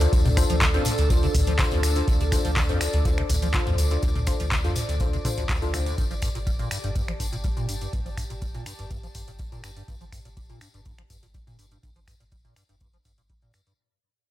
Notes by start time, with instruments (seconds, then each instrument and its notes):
Already playing: analog synth pad D4 A4 D5
0.01 acid bass D2, synth stab D4 F4 A4 C5, closed hi-hat, tambourine
0.12 acid bass D2, sub bass D2, kick, closed hi-hat, tambourine
0.25 acid bass C3, closed hi-hat, mid tom, tambourine
0.37 acid bass D2, synth stab D4 F4 A4 C5, finger snap, kick, open hi-hat, tambourine
0.50 sub bass D2, acid bass F3, closed hi-hat, tambourine
0.61 acid bass D3, kick, clap, closed hi-hat, tambourine
0.74 acid bass F2, synth stab D4 F4 A4 C5, closed hi-hat, tambourine
0.85 acid bass D2, open hi-hat, mid tom, tambourine
0.98 sub bass D2, acid bass D2, closed hi-hat, tambourine
1.10 acid bass D2, synth stab D4 F4 A4 C5, kick, closed hi-hat, tambourine
1.23 acid bass C3, closed hi-hat, tambourine
1.34 acid bass D2, sub bass D2, kick, open hi-hat, mid tom, tambourine
1.47 acid bass F3, closed hi-hat, tambourine
1.59 acid bass D3, synth stab D4 F4 A4 C5, kick, clap, closed hi-hat, tambourine
1.71 sub bass D2, acid bass F2, closed hi-hat, tambourine
1.83 acid bass D2, finger snap, open hi-hat, tambourine
1.95 acid bass D2, synth stab D4 F4 A4 C5, closed hi-hat, tambourine
2.08 acid bass D2, sub bass D2, kick, closed hi-hat, tambourine
2.20 acid bass C3, closed hi-hat, tambourine
2.32 acid bass D2, synth stab D4 F4 A4 C5, finger snap, kick, open hi-hat, tambourine
2.45 sub bass D2, acid bass F3, closed hi-hat, tambourine
2.56 acid bass D3, kick, clap, closed hi-hat, tambourine
2.69 acid bass F2, synth stab D4 F4 A4 C5, closed hi-hat, tambourine
2.81 acid bass D2, finger snap, open hi-hat, tambourine
2.93 sub bass D2, acid bass D2, closed hi-hat, tambourine
3.05 acid bass D2, synth stab D4 F4 A4 C5, kick, closed hi-hat, tambourine
3.18 acid bass C3, finger snap, closed hi-hat
3.30 acid bass D2, sub bass D2, kick, open hi-hat, mid tom, tambourine
3.42 acid bass F3, closed hi-hat, tambourine
3.54 acid bass D3, synth stab D4 F4 A4 C5, kick, clap, closed hi-hat, tambourine
3.67 sub bass D2, acid bass F2, closed hi-hat, mid tom, tambourine
3.78 acid bass D2, open hi-hat, tambourine
3.91 acid bass D2, synth stab D4 F4 A4 C5, closed hi-hat, tambourine
4.02 sub bass D2, acid bass D2, kick, closed hi-hat, tambourine
4.15 acid bass C3, closed hi-hat, mid tom, tambourine
4.27 acid bass D2, synth stab D4 F4 A4 C5, finger snap, kick, open hi-hat, tambourine
4.40 sub bass D2, acid bass F3, closed hi-hat, tambourine
4.52 acid bass D3, kick, clap, closed hi-hat, tambourine
4.64 acid bass F2, synth stab D4 F4 A4 C5, closed hi-hat, tambourine
4.76 acid bass D2, open hi-hat, mid tom, tambourine
4.89 acid bass D2, sub bass D2, closed hi-hat, tambourine
5.00 acid bass D2, synth stab D4 F4 A4 C5, kick, closed hi-hat, tambourine
5.13 acid bass C3, closed hi-hat, tambourine
5.25 sub bass A1, acid bass D3, synth stab D4 F4 A4 C5, kick, open hi-hat, mid tom, tambourine
5.37 acid bass D2, closed hi-hat, tambourine
5.49 acid bass D2, kick, clap, closed hi-hat, tambourine
5.62 acid bass C2, sub bass D2, synth stab D4 F4 A4 C5, closed hi-hat, tambourine
5.73 acid bass C2, synth stab D4 F4 A4 C5, finger snap, open hi-hat, tambourine
5.86 acid bass D2, closed hi-hat, tambourine
5.98 sub bass G1, acid bass G2, analog synth pad G4, kick, closed hi-hat, tambourine
6.11 acid bass F3, closed hi-hat, tambourine
6.22 acid bass G2, finger snap, kick, open hi-hat, tambourine
6.35 sub bass G1, acid bass A#2, analog synth pad A5, closed hi-hat, tambourine
6.46 acid bass G3, kick, closed hi-hat, tambourine
6.59 acid bass A#2, closed hi-hat, tambourine
6.71 acid bass G2, finger snap, open hi-hat, tambourine
6.84 sub bass G1, acid bass G2, closed hi-hat, tambourine
6.95 acid bass G2, kick, closed hi-hat, tambourine
7.08 acid bass F3, finger snap, closed hi-hat
7.20 sub bass G1, acid bass G2, kick, open hi-hat, tambourine
7.32 acid bass A#2, closed hi-hat, tambourine
7.44 acid bass G3, kick, closed hi-hat, tambourine
7.57 sub bass G1, acid bass A#2, closed hi-hat, tambourine
7.68 acid bass G2, open hi-hat, tambourine
7.81 acid bass G2, closed hi-hat, tambourine
7.93 sub bass G1, acid bass G2, kick, closed hi-hat, tambourine
8.06 acid bass F3, closed hi-hat, tambourine
8.17 acid bass G2, finger snap, kick, open hi-hat, tambourine
8.30 sub bass G1, acid bass A#2, closed hi-hat, tambourine
8.42 acid bass G3, kick, closed hi-hat, tambourine
8.54 acid bass A#2, closed hi-hat, tambourine
8.66 acid bass G2, finger snap, open hi-hat, tambourine
8.79 sub bass G1, acid bass G2, closed hi-hat, tambourine
8.90 acid bass G2, kick, closed hi-hat, tambourine
9.03 acid bass F3, closed hi-hat, tambourine
9.15 sub bass G1, acid bass G2, kick, open hi-hat, tambourine
9.27 acid bass A#2, closed hi-hat, tambourine
9.38 acid bass G3, kick, closed hi-hat, tambourine
9.52 sub bass G1, acid bass A#2, closed hi-hat, tambourine
9.64 acid bass G2, finger snap, open hi-hat, tambourine
9.76 acid bass G2, closed hi-hat, tambourine
9.88 sub bass G1, acid bass G2, kick, closed hi-hat, tambourine
10.01 acid bass F3, closed hi-hat, tambourine
10.12 acid bass G2, finger snap, kick, open hi-hat, tambourine
10.25 sub bass G1, acid bass A#2, closed hi-hat, tambourine
10.37 acid bass G3, kick, closed hi-hat, tambourine
10.49 acid bass A#2, closed hi-hat, tambourine
10.61 acid bass G2, finger snap, open hi-hat, tambourine
10.74 sub bass G1, acid bass G2, closed hi-hat, tambourine
10.85 acid bass G2, kick, closed hi-hat, tambourine
10.98 acid bass F3, finger snap, closed hi-hat
11.10 sub bass G1, acid bass G2, kick, open hi-hat, tambourine
11.23 acid bass A#2, closed hi-hat, tambourine
11.34 acid bass G3, kick, closed hi-hat, tambourine
11.47 sub bass G1, acid bass A#2, closed hi-hat, tambourine
11.59 acid bass G2, open hi-hat, tambourine
11.71 acid bass G2, closed hi-hat, tambourine
11.83 sub bass G1, acid bass G2, kick, closed hi-hat, tambourine
11.96 acid bass F3, closed hi-hat, tambourine
12.07 acid bass G2, finger snap, kick, open hi-hat, tambourine
12.20 sub bass G1, acid bass A#2, closed hi-hat, tambourine
12.32 acid bass G3, kick, closed hi-hat, tambourine
12.45 acid bass A#2, closed hi-hat, tambourine
12.56 acid bass G2, finger snap, open hi-hat, tambourine
12.69 sub bass G1, acid bass G2, closed hi-hat, tambourine
12.80 acid bass G2, kick, closed hi-hat, tambourine
12.93 acid bass F3, closed hi-hat, tambourine
13.05 sub bass G1, acid bass G2, kick, open hi-hat, tambourine
13.18 acid bass A#2, closed hi-hat, tambourine
13.29 acid bass G3, kick, closed hi-hat, tambourine
13.42 sub bass G1, acid bass A#2, closed hi-hat, tambourine
13.53 acid bass G2, finger snap, open hi-hat, tambourine
13.67 acid bass G2, closed hi-hat, tambourine